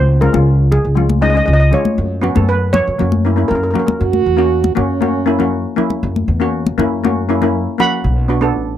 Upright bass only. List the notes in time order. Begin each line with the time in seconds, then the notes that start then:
Already playing: C#2
0.34 C#2
0.85 C#2
1.48 C#2
1.98 F#2
2.36 F#2
2.87 F#2
3.00 F#2
3.50 F#2
4.01 F#2
4.26 E2
4.77 F#2
6.03 F#2
6.28 E2
6.78 F#2
8.04 B1
8.55 A1